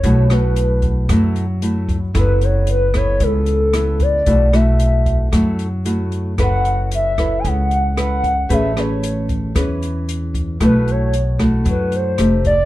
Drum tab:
HH |xxxxxxxx|xxxxxxxx|xxxxxxxx|xxxxxxxx|
SD |-r--r---|r--r--r-|-r--r---|r--r--r-|
BD |o--oo--o|o--oo--o|o--oo---|o--oo--o|

HH |xxxxxxxx|xxxxxxxx|
SD |-r--r---|r--r--r-|
BD |o--oo--o|o--oo--o|